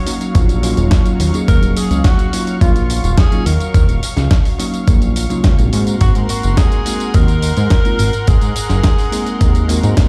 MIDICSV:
0, 0, Header, 1, 6, 480
1, 0, Start_track
1, 0, Tempo, 566038
1, 1258, Time_signature, 4, 2, 24, 8
1, 8552, End_track
2, 0, Start_track
2, 0, Title_t, "Analog synth pad"
2, 0, Program_c, 0, 89
2, 0, Note_on_c, 0, 54, 82
2, 0, Note_on_c, 0, 77, 73
2, 0, Note_on_c, 0, 85, 91
2, 4825, Note_off_c, 0, 77, 0
2, 4825, Note_off_c, 0, 85, 0
2, 4826, Note_off_c, 0, 54, 0
2, 4858, Note_on_c, 0, 78, 74
2, 4859, Note_on_c, 0, 70, 79
2, 4861, Note_on_c, 0, 84, 86
2, 8552, Note_off_c, 0, 70, 0
2, 8552, Note_off_c, 0, 78, 0
2, 8552, Note_off_c, 0, 84, 0
2, 8552, End_track
3, 0, Start_track
3, 0, Title_t, "Tenor saxophone"
3, 0, Program_c, 1, 66
3, 0, Note_on_c, 1, 73, 126
3, 539, Note_off_c, 1, 73, 0
3, 1260, Note_on_c, 1, 70, 117
3, 1502, Note_on_c, 1, 68, 105
3, 1515, Note_off_c, 1, 70, 0
3, 1733, Note_off_c, 1, 68, 0
3, 1738, Note_on_c, 1, 66, 104
3, 2185, Note_off_c, 1, 66, 0
3, 2219, Note_on_c, 1, 65, 103
3, 2697, Note_on_c, 1, 68, 102
3, 2710, Note_off_c, 1, 65, 0
3, 2934, Note_on_c, 1, 70, 102
3, 2947, Note_off_c, 1, 68, 0
3, 3416, Note_off_c, 1, 70, 0
3, 5099, Note_on_c, 1, 66, 97
3, 5207, Note_off_c, 1, 66, 0
3, 5342, Note_on_c, 1, 66, 95
3, 5583, Note_on_c, 1, 68, 106
3, 5596, Note_off_c, 1, 66, 0
3, 6064, Note_on_c, 1, 70, 123
3, 6077, Note_off_c, 1, 68, 0
3, 7026, Note_on_c, 1, 68, 110
3, 7038, Note_off_c, 1, 70, 0
3, 8552, Note_off_c, 1, 68, 0
3, 8552, End_track
4, 0, Start_track
4, 0, Title_t, "Tine electric piano"
4, 0, Program_c, 2, 4
4, 52, Note_on_c, 2, 54, 90
4, 55, Note_on_c, 2, 58, 83
4, 55, Note_on_c, 2, 61, 81
4, 60, Note_on_c, 2, 63, 80
4, 61, Note_on_c, 2, 66, 94
4, 507, Note_off_c, 2, 54, 0
4, 508, Note_off_c, 2, 58, 0
4, 508, Note_off_c, 2, 61, 0
4, 510, Note_off_c, 2, 63, 0
4, 511, Note_off_c, 2, 66, 0
4, 531, Note_on_c, 2, 54, 96
4, 535, Note_on_c, 2, 58, 87
4, 540, Note_on_c, 2, 61, 91
4, 544, Note_on_c, 2, 63, 92
4, 548, Note_on_c, 2, 65, 110
4, 1106, Note_off_c, 2, 54, 0
4, 1108, Note_off_c, 2, 58, 0
4, 1110, Note_off_c, 2, 61, 0
4, 1113, Note_off_c, 2, 63, 0
4, 1114, Note_off_c, 2, 65, 0
4, 1130, Note_on_c, 2, 54, 83
4, 1133, Note_on_c, 2, 58, 76
4, 1137, Note_on_c, 2, 61, 75
4, 1142, Note_on_c, 2, 63, 75
4, 1145, Note_on_c, 2, 68, 92
4, 1945, Note_off_c, 2, 54, 0
4, 1947, Note_off_c, 2, 58, 0
4, 1949, Note_off_c, 2, 61, 0
4, 1951, Note_off_c, 2, 63, 0
4, 1953, Note_off_c, 2, 68, 0
4, 1976, Note_on_c, 2, 54, 73
4, 1979, Note_on_c, 2, 58, 68
4, 1981, Note_on_c, 2, 61, 68
4, 1983, Note_on_c, 2, 63, 67
4, 1984, Note_on_c, 2, 65, 81
4, 2189, Note_off_c, 2, 54, 0
4, 2190, Note_off_c, 2, 58, 0
4, 2191, Note_off_c, 2, 61, 0
4, 2192, Note_off_c, 2, 63, 0
4, 2193, Note_off_c, 2, 65, 0
4, 2217, Note_on_c, 2, 54, 81
4, 2220, Note_on_c, 2, 58, 77
4, 2220, Note_on_c, 2, 61, 76
4, 2223, Note_on_c, 2, 63, 75
4, 2226, Note_on_c, 2, 65, 90
4, 2324, Note_off_c, 2, 54, 0
4, 2325, Note_off_c, 2, 58, 0
4, 2325, Note_off_c, 2, 61, 0
4, 2327, Note_off_c, 2, 63, 0
4, 2328, Note_off_c, 2, 65, 0
4, 2814, Note_on_c, 2, 54, 86
4, 2815, Note_on_c, 2, 58, 78
4, 2819, Note_on_c, 2, 61, 76
4, 2821, Note_on_c, 2, 63, 80
4, 2823, Note_on_c, 2, 65, 95
4, 2922, Note_off_c, 2, 54, 0
4, 2923, Note_off_c, 2, 58, 0
4, 2925, Note_off_c, 2, 61, 0
4, 2926, Note_off_c, 2, 63, 0
4, 2927, Note_off_c, 2, 65, 0
4, 3889, Note_on_c, 2, 54, 87
4, 3891, Note_on_c, 2, 58, 82
4, 3895, Note_on_c, 2, 61, 78
4, 3896, Note_on_c, 2, 63, 81
4, 3896, Note_on_c, 2, 66, 96
4, 4345, Note_off_c, 2, 54, 0
4, 4346, Note_off_c, 2, 58, 0
4, 4348, Note_off_c, 2, 61, 0
4, 4349, Note_off_c, 2, 63, 0
4, 4349, Note_off_c, 2, 66, 0
4, 4491, Note_on_c, 2, 54, 85
4, 4492, Note_on_c, 2, 58, 79
4, 4494, Note_on_c, 2, 61, 80
4, 4497, Note_on_c, 2, 63, 78
4, 4498, Note_on_c, 2, 65, 94
4, 4664, Note_off_c, 2, 54, 0
4, 4665, Note_off_c, 2, 58, 0
4, 4666, Note_off_c, 2, 61, 0
4, 4667, Note_off_c, 2, 63, 0
4, 4668, Note_off_c, 2, 65, 0
4, 4729, Note_on_c, 2, 56, 85
4, 4732, Note_on_c, 2, 58, 77
4, 4736, Note_on_c, 2, 60, 78
4, 4740, Note_on_c, 2, 63, 77
4, 4744, Note_on_c, 2, 66, 95
4, 5785, Note_off_c, 2, 56, 0
4, 5787, Note_off_c, 2, 58, 0
4, 5788, Note_off_c, 2, 60, 0
4, 5791, Note_off_c, 2, 63, 0
4, 5793, Note_off_c, 2, 66, 0
4, 5813, Note_on_c, 2, 56, 74
4, 5816, Note_on_c, 2, 58, 68
4, 5818, Note_on_c, 2, 60, 66
4, 5821, Note_on_c, 2, 63, 66
4, 5823, Note_on_c, 2, 66, 78
4, 6027, Note_off_c, 2, 56, 0
4, 6028, Note_off_c, 2, 58, 0
4, 6030, Note_off_c, 2, 60, 0
4, 6031, Note_off_c, 2, 63, 0
4, 6032, Note_off_c, 2, 66, 0
4, 6051, Note_on_c, 2, 56, 80
4, 6051, Note_on_c, 2, 58, 73
4, 6053, Note_on_c, 2, 60, 77
4, 6056, Note_on_c, 2, 63, 75
4, 6058, Note_on_c, 2, 66, 92
4, 6161, Note_off_c, 2, 56, 0
4, 6161, Note_off_c, 2, 58, 0
4, 6162, Note_off_c, 2, 60, 0
4, 6163, Note_off_c, 2, 63, 0
4, 6164, Note_off_c, 2, 66, 0
4, 6652, Note_on_c, 2, 56, 87
4, 6656, Note_on_c, 2, 58, 78
4, 6657, Note_on_c, 2, 60, 80
4, 6660, Note_on_c, 2, 63, 78
4, 6661, Note_on_c, 2, 65, 91
4, 6761, Note_off_c, 2, 56, 0
4, 6763, Note_off_c, 2, 58, 0
4, 6764, Note_off_c, 2, 60, 0
4, 6765, Note_off_c, 2, 63, 0
4, 6766, Note_off_c, 2, 65, 0
4, 7732, Note_on_c, 2, 56, 87
4, 7734, Note_on_c, 2, 58, 82
4, 7737, Note_on_c, 2, 60, 80
4, 7739, Note_on_c, 2, 63, 79
4, 7742, Note_on_c, 2, 68, 95
4, 8186, Note_off_c, 2, 56, 0
4, 8188, Note_off_c, 2, 58, 0
4, 8189, Note_off_c, 2, 60, 0
4, 8190, Note_off_c, 2, 63, 0
4, 8191, Note_off_c, 2, 68, 0
4, 8208, Note_on_c, 2, 56, 96
4, 8211, Note_on_c, 2, 58, 91
4, 8215, Note_on_c, 2, 60, 89
4, 8222, Note_on_c, 2, 63, 90
4, 8223, Note_on_c, 2, 66, 107
4, 8552, Note_off_c, 2, 56, 0
4, 8552, Note_off_c, 2, 58, 0
4, 8552, Note_off_c, 2, 60, 0
4, 8552, Note_off_c, 2, 63, 0
4, 8552, Note_off_c, 2, 66, 0
4, 8552, End_track
5, 0, Start_track
5, 0, Title_t, "Analog synth bass"
5, 0, Program_c, 3, 38
5, 298, Note_on_c, 3, 34, 102
5, 620, Note_off_c, 3, 34, 0
5, 656, Note_on_c, 3, 27, 103
5, 753, Note_off_c, 3, 27, 0
5, 1017, Note_on_c, 3, 39, 98
5, 1114, Note_off_c, 3, 39, 0
5, 1258, Note_on_c, 3, 39, 98
5, 1354, Note_off_c, 3, 39, 0
5, 1376, Note_on_c, 3, 27, 79
5, 1474, Note_off_c, 3, 27, 0
5, 1617, Note_on_c, 3, 37, 100
5, 1714, Note_off_c, 3, 37, 0
5, 2215, Note_on_c, 3, 34, 105
5, 2538, Note_off_c, 3, 34, 0
5, 2577, Note_on_c, 3, 27, 105
5, 2674, Note_off_c, 3, 27, 0
5, 2935, Note_on_c, 3, 39, 97
5, 3033, Note_off_c, 3, 39, 0
5, 3176, Note_on_c, 3, 39, 99
5, 3273, Note_off_c, 3, 39, 0
5, 3296, Note_on_c, 3, 27, 81
5, 3393, Note_off_c, 3, 27, 0
5, 3536, Note_on_c, 3, 37, 104
5, 3633, Note_off_c, 3, 37, 0
5, 4135, Note_on_c, 3, 34, 106
5, 4459, Note_off_c, 3, 34, 0
5, 4499, Note_on_c, 3, 37, 44
5, 4595, Note_off_c, 3, 37, 0
5, 4616, Note_on_c, 3, 37, 80
5, 4713, Note_off_c, 3, 37, 0
5, 4738, Note_on_c, 3, 34, 90
5, 4835, Note_off_c, 3, 34, 0
5, 4860, Note_on_c, 3, 44, 93
5, 5052, Note_off_c, 3, 44, 0
5, 5097, Note_on_c, 3, 32, 98
5, 5194, Note_off_c, 3, 32, 0
5, 5224, Note_on_c, 3, 44, 79
5, 5317, Note_off_c, 3, 44, 0
5, 5465, Note_on_c, 3, 30, 101
5, 5558, Note_off_c, 3, 30, 0
5, 6060, Note_on_c, 3, 39, 104
5, 6381, Note_off_c, 3, 39, 0
5, 6421, Note_on_c, 3, 44, 101
5, 6516, Note_off_c, 3, 44, 0
5, 6780, Note_on_c, 3, 32, 95
5, 6876, Note_off_c, 3, 32, 0
5, 7021, Note_on_c, 3, 32, 100
5, 7116, Note_off_c, 3, 32, 0
5, 7139, Note_on_c, 3, 44, 79
5, 7235, Note_off_c, 3, 44, 0
5, 7379, Note_on_c, 3, 30, 101
5, 7475, Note_off_c, 3, 30, 0
5, 7980, Note_on_c, 3, 39, 105
5, 8301, Note_off_c, 3, 39, 0
5, 8339, Note_on_c, 3, 44, 103
5, 8435, Note_off_c, 3, 44, 0
5, 8552, End_track
6, 0, Start_track
6, 0, Title_t, "Drums"
6, 56, Note_on_c, 9, 46, 107
6, 62, Note_on_c, 9, 54, 76
6, 141, Note_off_c, 9, 46, 0
6, 147, Note_off_c, 9, 54, 0
6, 177, Note_on_c, 9, 42, 40
6, 183, Note_on_c, 9, 54, 32
6, 262, Note_off_c, 9, 42, 0
6, 268, Note_off_c, 9, 54, 0
6, 296, Note_on_c, 9, 42, 67
6, 298, Note_on_c, 9, 36, 120
6, 302, Note_on_c, 9, 54, 43
6, 380, Note_off_c, 9, 42, 0
6, 383, Note_off_c, 9, 36, 0
6, 386, Note_off_c, 9, 54, 0
6, 417, Note_on_c, 9, 42, 40
6, 423, Note_on_c, 9, 54, 22
6, 502, Note_off_c, 9, 42, 0
6, 508, Note_off_c, 9, 54, 0
6, 536, Note_on_c, 9, 46, 108
6, 542, Note_on_c, 9, 54, 73
6, 621, Note_off_c, 9, 46, 0
6, 627, Note_off_c, 9, 54, 0
6, 655, Note_on_c, 9, 42, 40
6, 661, Note_on_c, 9, 54, 32
6, 739, Note_off_c, 9, 42, 0
6, 745, Note_off_c, 9, 54, 0
6, 772, Note_on_c, 9, 38, 122
6, 775, Note_on_c, 9, 42, 66
6, 778, Note_on_c, 9, 36, 123
6, 782, Note_on_c, 9, 54, 43
6, 857, Note_off_c, 9, 38, 0
6, 860, Note_off_c, 9, 42, 0
6, 862, Note_off_c, 9, 36, 0
6, 866, Note_off_c, 9, 54, 0
6, 895, Note_on_c, 9, 42, 40
6, 901, Note_on_c, 9, 54, 21
6, 979, Note_off_c, 9, 42, 0
6, 985, Note_off_c, 9, 54, 0
6, 1016, Note_on_c, 9, 46, 106
6, 1022, Note_on_c, 9, 54, 72
6, 1101, Note_off_c, 9, 46, 0
6, 1107, Note_off_c, 9, 54, 0
6, 1137, Note_on_c, 9, 42, 40
6, 1143, Note_on_c, 9, 54, 32
6, 1221, Note_off_c, 9, 42, 0
6, 1227, Note_off_c, 9, 54, 0
6, 1257, Note_on_c, 9, 36, 126
6, 1257, Note_on_c, 9, 42, 65
6, 1263, Note_on_c, 9, 54, 43
6, 1342, Note_off_c, 9, 36, 0
6, 1342, Note_off_c, 9, 42, 0
6, 1348, Note_off_c, 9, 54, 0
6, 1379, Note_on_c, 9, 42, 39
6, 1385, Note_on_c, 9, 54, 21
6, 1464, Note_off_c, 9, 42, 0
6, 1470, Note_off_c, 9, 54, 0
6, 1497, Note_on_c, 9, 46, 114
6, 1503, Note_on_c, 9, 54, 76
6, 1582, Note_off_c, 9, 46, 0
6, 1588, Note_off_c, 9, 54, 0
6, 1618, Note_on_c, 9, 42, 38
6, 1624, Note_on_c, 9, 54, 32
6, 1703, Note_off_c, 9, 42, 0
6, 1709, Note_off_c, 9, 54, 0
6, 1733, Note_on_c, 9, 38, 124
6, 1736, Note_on_c, 9, 36, 127
6, 1736, Note_on_c, 9, 42, 63
6, 1742, Note_on_c, 9, 54, 42
6, 1818, Note_off_c, 9, 38, 0
6, 1821, Note_off_c, 9, 36, 0
6, 1821, Note_off_c, 9, 42, 0
6, 1827, Note_off_c, 9, 54, 0
6, 1857, Note_on_c, 9, 42, 39
6, 1863, Note_on_c, 9, 54, 21
6, 1942, Note_off_c, 9, 42, 0
6, 1948, Note_off_c, 9, 54, 0
6, 1977, Note_on_c, 9, 46, 114
6, 1983, Note_on_c, 9, 54, 76
6, 2061, Note_off_c, 9, 46, 0
6, 2067, Note_off_c, 9, 54, 0
6, 2097, Note_on_c, 9, 42, 38
6, 2103, Note_on_c, 9, 54, 32
6, 2181, Note_off_c, 9, 42, 0
6, 2187, Note_off_c, 9, 54, 0
6, 2216, Note_on_c, 9, 36, 125
6, 2216, Note_on_c, 9, 42, 62
6, 2222, Note_on_c, 9, 54, 43
6, 2301, Note_off_c, 9, 36, 0
6, 2301, Note_off_c, 9, 42, 0
6, 2307, Note_off_c, 9, 54, 0
6, 2338, Note_on_c, 9, 42, 38
6, 2344, Note_on_c, 9, 54, 21
6, 2423, Note_off_c, 9, 42, 0
6, 2429, Note_off_c, 9, 54, 0
6, 2458, Note_on_c, 9, 46, 110
6, 2464, Note_on_c, 9, 54, 73
6, 2543, Note_off_c, 9, 46, 0
6, 2549, Note_off_c, 9, 54, 0
6, 2578, Note_on_c, 9, 42, 37
6, 2584, Note_on_c, 9, 54, 31
6, 2663, Note_off_c, 9, 42, 0
6, 2669, Note_off_c, 9, 54, 0
6, 2693, Note_on_c, 9, 38, 125
6, 2696, Note_on_c, 9, 36, 126
6, 2696, Note_on_c, 9, 42, 64
6, 2702, Note_on_c, 9, 54, 41
6, 2778, Note_off_c, 9, 38, 0
6, 2780, Note_off_c, 9, 36, 0
6, 2781, Note_off_c, 9, 42, 0
6, 2787, Note_off_c, 9, 54, 0
6, 2816, Note_on_c, 9, 42, 40
6, 2822, Note_on_c, 9, 54, 21
6, 2901, Note_off_c, 9, 42, 0
6, 2907, Note_off_c, 9, 54, 0
6, 2936, Note_on_c, 9, 46, 111
6, 2942, Note_on_c, 9, 54, 72
6, 3021, Note_off_c, 9, 46, 0
6, 3027, Note_off_c, 9, 54, 0
6, 3057, Note_on_c, 9, 42, 38
6, 3063, Note_on_c, 9, 54, 32
6, 3142, Note_off_c, 9, 42, 0
6, 3148, Note_off_c, 9, 54, 0
6, 3175, Note_on_c, 9, 36, 125
6, 3176, Note_on_c, 9, 42, 64
6, 3182, Note_on_c, 9, 54, 44
6, 3260, Note_off_c, 9, 36, 0
6, 3261, Note_off_c, 9, 42, 0
6, 3267, Note_off_c, 9, 54, 0
6, 3297, Note_on_c, 9, 42, 38
6, 3303, Note_on_c, 9, 54, 21
6, 3381, Note_off_c, 9, 42, 0
6, 3387, Note_off_c, 9, 54, 0
6, 3416, Note_on_c, 9, 46, 111
6, 3422, Note_on_c, 9, 54, 77
6, 3501, Note_off_c, 9, 46, 0
6, 3507, Note_off_c, 9, 54, 0
6, 3533, Note_on_c, 9, 38, 37
6, 3536, Note_on_c, 9, 42, 36
6, 3543, Note_on_c, 9, 54, 33
6, 3618, Note_off_c, 9, 38, 0
6, 3621, Note_off_c, 9, 42, 0
6, 3627, Note_off_c, 9, 54, 0
6, 3653, Note_on_c, 9, 38, 115
6, 3655, Note_on_c, 9, 36, 124
6, 3657, Note_on_c, 9, 42, 63
6, 3663, Note_on_c, 9, 54, 42
6, 3738, Note_off_c, 9, 38, 0
6, 3740, Note_off_c, 9, 36, 0
6, 3741, Note_off_c, 9, 42, 0
6, 3747, Note_off_c, 9, 54, 0
6, 3777, Note_on_c, 9, 46, 62
6, 3783, Note_on_c, 9, 54, 21
6, 3862, Note_off_c, 9, 46, 0
6, 3868, Note_off_c, 9, 54, 0
6, 3897, Note_on_c, 9, 46, 109
6, 3903, Note_on_c, 9, 54, 78
6, 3982, Note_off_c, 9, 46, 0
6, 3988, Note_off_c, 9, 54, 0
6, 4017, Note_on_c, 9, 42, 37
6, 4023, Note_on_c, 9, 54, 32
6, 4102, Note_off_c, 9, 42, 0
6, 4108, Note_off_c, 9, 54, 0
6, 4134, Note_on_c, 9, 42, 62
6, 4135, Note_on_c, 9, 36, 125
6, 4140, Note_on_c, 9, 54, 44
6, 4219, Note_off_c, 9, 42, 0
6, 4220, Note_off_c, 9, 36, 0
6, 4225, Note_off_c, 9, 54, 0
6, 4255, Note_on_c, 9, 42, 38
6, 4261, Note_on_c, 9, 54, 22
6, 4340, Note_off_c, 9, 42, 0
6, 4346, Note_off_c, 9, 54, 0
6, 4376, Note_on_c, 9, 46, 112
6, 4382, Note_on_c, 9, 54, 77
6, 4461, Note_off_c, 9, 46, 0
6, 4467, Note_off_c, 9, 54, 0
6, 4496, Note_on_c, 9, 42, 38
6, 4502, Note_on_c, 9, 54, 32
6, 4581, Note_off_c, 9, 42, 0
6, 4587, Note_off_c, 9, 54, 0
6, 4612, Note_on_c, 9, 38, 117
6, 4616, Note_on_c, 9, 36, 122
6, 4616, Note_on_c, 9, 42, 63
6, 4622, Note_on_c, 9, 54, 43
6, 4697, Note_off_c, 9, 38, 0
6, 4700, Note_off_c, 9, 42, 0
6, 4701, Note_off_c, 9, 36, 0
6, 4706, Note_off_c, 9, 54, 0
6, 4737, Note_on_c, 9, 42, 38
6, 4743, Note_on_c, 9, 54, 22
6, 4822, Note_off_c, 9, 42, 0
6, 4828, Note_off_c, 9, 54, 0
6, 4857, Note_on_c, 9, 46, 104
6, 4863, Note_on_c, 9, 54, 72
6, 4942, Note_off_c, 9, 46, 0
6, 4948, Note_off_c, 9, 54, 0
6, 4977, Note_on_c, 9, 42, 38
6, 4983, Note_on_c, 9, 54, 32
6, 5061, Note_off_c, 9, 42, 0
6, 5067, Note_off_c, 9, 54, 0
6, 5094, Note_on_c, 9, 42, 63
6, 5097, Note_on_c, 9, 36, 115
6, 5100, Note_on_c, 9, 54, 46
6, 5179, Note_off_c, 9, 42, 0
6, 5182, Note_off_c, 9, 36, 0
6, 5185, Note_off_c, 9, 54, 0
6, 5217, Note_on_c, 9, 42, 38
6, 5223, Note_on_c, 9, 54, 22
6, 5302, Note_off_c, 9, 42, 0
6, 5308, Note_off_c, 9, 54, 0
6, 5335, Note_on_c, 9, 46, 113
6, 5341, Note_on_c, 9, 54, 83
6, 5420, Note_off_c, 9, 46, 0
6, 5426, Note_off_c, 9, 54, 0
6, 5456, Note_on_c, 9, 42, 37
6, 5462, Note_on_c, 9, 54, 33
6, 5540, Note_off_c, 9, 42, 0
6, 5546, Note_off_c, 9, 54, 0
6, 5573, Note_on_c, 9, 38, 113
6, 5577, Note_on_c, 9, 42, 63
6, 5578, Note_on_c, 9, 36, 121
6, 5583, Note_on_c, 9, 54, 45
6, 5658, Note_off_c, 9, 38, 0
6, 5662, Note_off_c, 9, 42, 0
6, 5663, Note_off_c, 9, 36, 0
6, 5668, Note_off_c, 9, 54, 0
6, 5697, Note_on_c, 9, 42, 38
6, 5703, Note_on_c, 9, 54, 22
6, 5781, Note_off_c, 9, 42, 0
6, 5787, Note_off_c, 9, 54, 0
6, 5816, Note_on_c, 9, 46, 106
6, 5822, Note_on_c, 9, 54, 81
6, 5901, Note_off_c, 9, 46, 0
6, 5907, Note_off_c, 9, 54, 0
6, 5938, Note_on_c, 9, 42, 37
6, 5944, Note_on_c, 9, 54, 35
6, 6022, Note_off_c, 9, 42, 0
6, 6028, Note_off_c, 9, 54, 0
6, 6055, Note_on_c, 9, 42, 64
6, 6059, Note_on_c, 9, 36, 120
6, 6061, Note_on_c, 9, 54, 45
6, 6140, Note_off_c, 9, 42, 0
6, 6144, Note_off_c, 9, 36, 0
6, 6146, Note_off_c, 9, 54, 0
6, 6175, Note_on_c, 9, 42, 38
6, 6181, Note_on_c, 9, 54, 23
6, 6260, Note_off_c, 9, 42, 0
6, 6266, Note_off_c, 9, 54, 0
6, 6296, Note_on_c, 9, 46, 104
6, 6302, Note_on_c, 9, 54, 78
6, 6381, Note_off_c, 9, 46, 0
6, 6387, Note_off_c, 9, 54, 0
6, 6417, Note_on_c, 9, 42, 39
6, 6423, Note_on_c, 9, 54, 34
6, 6501, Note_off_c, 9, 42, 0
6, 6507, Note_off_c, 9, 54, 0
6, 6533, Note_on_c, 9, 38, 114
6, 6536, Note_on_c, 9, 42, 65
6, 6539, Note_on_c, 9, 36, 119
6, 6542, Note_on_c, 9, 54, 44
6, 6618, Note_off_c, 9, 38, 0
6, 6621, Note_off_c, 9, 42, 0
6, 6624, Note_off_c, 9, 36, 0
6, 6627, Note_off_c, 9, 54, 0
6, 6657, Note_on_c, 9, 42, 38
6, 6663, Note_on_c, 9, 54, 22
6, 6742, Note_off_c, 9, 42, 0
6, 6748, Note_off_c, 9, 54, 0
6, 6776, Note_on_c, 9, 46, 101
6, 6782, Note_on_c, 9, 54, 78
6, 6860, Note_off_c, 9, 46, 0
6, 6866, Note_off_c, 9, 54, 0
6, 6896, Note_on_c, 9, 42, 39
6, 6902, Note_on_c, 9, 54, 33
6, 6980, Note_off_c, 9, 42, 0
6, 6986, Note_off_c, 9, 54, 0
6, 7016, Note_on_c, 9, 42, 67
6, 7020, Note_on_c, 9, 36, 116
6, 7022, Note_on_c, 9, 54, 47
6, 7101, Note_off_c, 9, 42, 0
6, 7105, Note_off_c, 9, 36, 0
6, 7107, Note_off_c, 9, 54, 0
6, 7135, Note_on_c, 9, 42, 39
6, 7141, Note_on_c, 9, 54, 23
6, 7220, Note_off_c, 9, 42, 0
6, 7226, Note_off_c, 9, 54, 0
6, 7257, Note_on_c, 9, 46, 108
6, 7263, Note_on_c, 9, 54, 86
6, 7342, Note_off_c, 9, 46, 0
6, 7348, Note_off_c, 9, 54, 0
6, 7374, Note_on_c, 9, 38, 35
6, 7377, Note_on_c, 9, 42, 39
6, 7383, Note_on_c, 9, 54, 35
6, 7459, Note_off_c, 9, 38, 0
6, 7462, Note_off_c, 9, 42, 0
6, 7468, Note_off_c, 9, 54, 0
6, 7492, Note_on_c, 9, 38, 112
6, 7496, Note_on_c, 9, 42, 65
6, 7500, Note_on_c, 9, 36, 116
6, 7502, Note_on_c, 9, 54, 45
6, 7577, Note_off_c, 9, 38, 0
6, 7581, Note_off_c, 9, 42, 0
6, 7585, Note_off_c, 9, 36, 0
6, 7587, Note_off_c, 9, 54, 0
6, 7618, Note_on_c, 9, 46, 59
6, 7624, Note_on_c, 9, 54, 23
6, 7703, Note_off_c, 9, 46, 0
6, 7709, Note_off_c, 9, 54, 0
6, 7737, Note_on_c, 9, 46, 101
6, 7743, Note_on_c, 9, 54, 84
6, 7822, Note_off_c, 9, 46, 0
6, 7828, Note_off_c, 9, 54, 0
6, 7857, Note_on_c, 9, 42, 38
6, 7863, Note_on_c, 9, 54, 34
6, 7942, Note_off_c, 9, 42, 0
6, 7948, Note_off_c, 9, 54, 0
6, 7978, Note_on_c, 9, 42, 65
6, 7980, Note_on_c, 9, 36, 116
6, 7984, Note_on_c, 9, 54, 47
6, 8063, Note_off_c, 9, 42, 0
6, 8065, Note_off_c, 9, 36, 0
6, 8069, Note_off_c, 9, 54, 0
6, 8098, Note_on_c, 9, 42, 38
6, 8104, Note_on_c, 9, 54, 23
6, 8183, Note_off_c, 9, 42, 0
6, 8189, Note_off_c, 9, 54, 0
6, 8218, Note_on_c, 9, 46, 100
6, 8224, Note_on_c, 9, 54, 82
6, 8303, Note_off_c, 9, 46, 0
6, 8309, Note_off_c, 9, 54, 0
6, 8339, Note_on_c, 9, 42, 39
6, 8345, Note_on_c, 9, 54, 34
6, 8424, Note_off_c, 9, 42, 0
6, 8430, Note_off_c, 9, 54, 0
6, 8455, Note_on_c, 9, 38, 112
6, 8459, Note_on_c, 9, 42, 66
6, 8460, Note_on_c, 9, 36, 116
6, 8465, Note_on_c, 9, 54, 47
6, 8540, Note_off_c, 9, 38, 0
6, 8543, Note_off_c, 9, 42, 0
6, 8545, Note_off_c, 9, 36, 0
6, 8549, Note_off_c, 9, 54, 0
6, 8552, End_track
0, 0, End_of_file